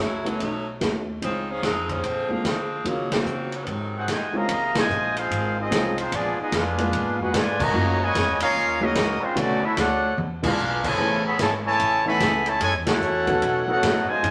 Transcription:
0.00 C#2 F#3 A3 C#4 E4
0.24 E3 F#3 A3 B3 C#4 D#4 F#4, ride
0.40 B1 F#3 A3 C#4 D#4, kick, ride
0.80 D#2 A3 B3 C#4 D#4 F#4, kick, snare, hi-hat pedal, ride
1.21 C#2 D#3 F3 G#3 C4 C#4 D#4 F4, kick, ride
1.49 D#3 F3 G#3 C#4
1.63 F2 F3 G#3 C4 D#4, kick, snare, hi-hat pedal, ride
1.89 D#3 F3 G#3 C#4, kick, ride
2.03 A#2 D3 F3 G#3 C4, kick, ride
2.29 D3 F3 G#3 A#3 C4 D4 F4, muted upright bass stroke
2.44 D3 F3 G#3 A#3 C4, kick, snare, hi-hat pedal, ride
2.84 C#3 D#3 F#3 A#3 D#4 F4, kick, ride
3.12 D#3 F#3 A#3 C4, snare, ride
3.25 C#3, hi-hat pedal
3.52 D#3 F#3 A#3 C#4, ride
3.63 G#2 C3 B3, kick, ride
3.67 F#2 D#3 F#3 G#3 C4
3.95 C4 D#4 F#4 G#4 C5 F#5
4.08 C3 D#3 G#3 F#4 C5 D#5 G#5, kick, snare, hi-hat pedal, ride
4.33 C3 F3 G#3 A#3 C4 C#4 D#4 F4 G#4 D#5 F5 A#5
4.48 C#2, kick, ride
4.75 C3 F3 G#3 F4 C5 D#5 G#5, snare, ride
4.89 A#1, hi-hat pedal
5.17 G#3 C4 D#4 F4 G#4 C5 F5, ride
5.30 G#1, kick, ride
5.59 G#3 C4 D#4 F4 G#4 D#5
5.70 C2 G#3 C4 C#4 D#4 F4, kick, snare, hi-hat pedal, ride
5.98 F3 G#3 C4 D#4 F4 C5, ride
6.12 A#1 F3 G#3 B3 D4 F4 G#4 D5, kick, ride
6.38 B3 D#4 F4 G#4 D#5, muted upright bass stroke
6.52 F2 G#3 D4 F4 G#4 B4 F5, kick, snare, hi-hat pedal, ride
6.78 G#3 A#3 B3 D4 F4, ride
6.93 A#2, kick, ride
7.06 G#2
7.20 F2 D#4 F#4 G#4 B4 F#5
7.33 G#2 D3 F3 G#3 F4 B4 D5 G#5, kick, snare, hi-hat pedal, ride
7.60 C#3 F#3 A#3 F#4 C#5 D#5 A#5, kick, crash
7.73 F#2 F#3 A#3 C#4 D#4 F4
8.01 A#2 C#3 G#3 F#4 C#5 D#5 G#5
8.15 F2, kick, snare, hi-hat pedal, ride
8.28 D#2
8.40 C#2 A#3 C#4 D#4 F4 A#4 C#5 F5, ride
8.55 D#2, kick
8.80 F#3 A#3 C#4 D#4 F#4 G#4 A#4 D#5
8.95 C#2, kick, snare, hi-hat pedal, ride
9.22 G#3 C4 C#4 F4 C5
9.35 B1 D3 F#3 A3 B3 C#4 D4 F#4 D5, kick, ride
9.62 C#4 E4 F#4 A4 E5, muted upright bass stroke
9.77 D2 A3 D4 F#4 A4 C#5 F#5, kick, snare, hi-hat pedal, ride
10.17 E2, high tom
10.42 E3 G#3 B3 D4 F4 G#4 B4 F5, kick, crash
10.57 B1, hi-hat pedal
10.84 C#3 E3 F3 E4 A4 C#5 G#5, kick, crash
10.98 A1 E3 A3 B3 C#4 G#4, kick
11.25 B3 G#4 C#5 E5 B5
11.39 G#1 C#3 E3 A3 E4 G#4 C#5 A5, kick, snare, hi-hat pedal, ride
11.65 C#3 E3 A3 E4 C#5 G#5 A5
11.79 A1, kick, ride
12.05 E3 A3 B3 C#4 D#4 A4 E5 G#5 B5
12.20 C#2, kick, snare, hi-hat pedal, ride
12.46 C#3 E3 A3 E4 G#4 C#5 A5, ride
12.60 F#2 G#3 E4 A4 C#5 G#5, kick, ride
12.74 E2
12.87 C#2 A3 C#4 E4 F#4 A4 C#5 F#5, snare, ride
13.00 E2, hi-hat pedal
13.26 F#3 B3 C#4 D#4 A4, kick, ride
13.42 B2, kick, ride
13.67 F#3 A3 B3 C#4 D#4 F#4 A4 C#5 F#5
13.83 A2, kick, snare, hi-hat pedal, ride
14.08 C3 F3 G#3 F4 C5 D#5 G#5, muted upright bass stroke
14.22 G#2 F3 C4 C#4 D#4 G#4, kick, ride

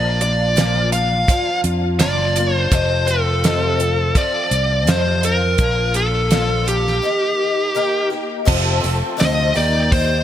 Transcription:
Already playing: A#1 A#2 F3 A#3 D4 F4 D5
0.21 A#3 D4 F4 D5, closed hi-hat
0.56 A#2 F3 A#3 D4 F4, snare, closed hi-hat
0.92 D4 F4 F5, closed hi-hat
0.96 A#3
1.28 F3 A#3 D4 F4, kick, closed hi-hat
1.64 F2, closed hi-hat
1.99 F#1 A#2 F3 A#3 D4 F4 D5, snare, closed hi-hat
2.35 A#3 D4 F4, closed hi-hat
2.55 C5
2.71 F1 F2 C3 F3 A3 C4 F4 C5, kick, closed hi-hat
3.06 F3 A3 C4 F4 A4, closed hi-hat
3.44 F2 C3 F3 A3 C4 F4, snare, closed hi-hat
3.79 F3 A3 C4 F4, closed hi-hat
4.15 F3 A3 C4 F4 D5, kick, closed hi-hat
4.51 C2, closed hi-hat
4.87 F2 C3 F3 A3 C4 F4 C5, snare, closed hi-hat
5.23 F3 C4 F4 A#4, closed hi-hat
5.58 A#1 A#2 F3 A#3 D4 F4, kick, closed hi-hat
5.94 D4 F4 A4, closed hi-hat
5.98 A#3
6.31 A#2 F3 A#3 D4 F4, snare, closed hi-hat
6.66 A#3 D4 F4 G4, closed hi-hat
6.87 snare
7.02 D#3 A#3 D#4 G4
7.75 D#3 A#3 D#4 G4
8.10 A#3 D#4 G4
8.45 F1 F2 C3 F3 A3 C4 F4 A4, kick, crash
8.80 F1 F3 A3 C4 A4, open hi-hat
9.17 F2 C3 F3 A3 C4 A4 D#5, open hi-hat
9.21 D2, snare
9.54 D#2 D#3 A#3 D#4 G4 D5 G5, open hi-hat
9.92 C5, kick, open hi-hat

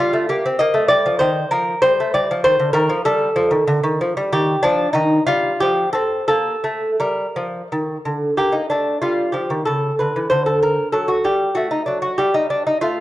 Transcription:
Already playing: F4
0.00 G3
0.13 A3
0.29 A#3 G4
0.46 C4
0.59 A#3 D#5
0.74 A3
0.88 G3 D5
1.06 F3
1.19 D#3 C5
1.51 F3 A#4
1.82 G3 C5
2.00 A3
2.14 G3 D5
2.31 F3
2.44 D#3 C5
2.59 D3
2.73 D#3 A#4
2.89 F3
3.05 G3 A4
3.36 F3
3.51 D#3
3.67 D3
3.83 D#3
4.01 F3
4.17 G3
4.33 D#3 G4
4.63 F3 D4
4.93 D#3 D#4
5.27 G3 F4
5.60 F3 G4
5.93 C4 A4
6.28 A#3 A4
6.64 A3
7.00 G3 A#4
7.36 F3
7.72 D#3
8.05 D3
8.37 A#3 G4
8.52 D#4
8.70 A3 D4
9.02 G3 F4
9.32 F3 G4
9.50 D#3
9.65 C#3 A4
9.99 D3 B4
10.16 E3
10.30 D3 C5
10.46 A4
10.63 A#4
10.92 F#3 A4
11.08 F#4
11.24 G3 G4
11.55 A3 F#4
11.71 D#4
11.86 F#3 D4
12.02 F#4
12.18 G3 G4
12.34 D#4
12.50 D4
12.67 D#4
12.81 A3 F4

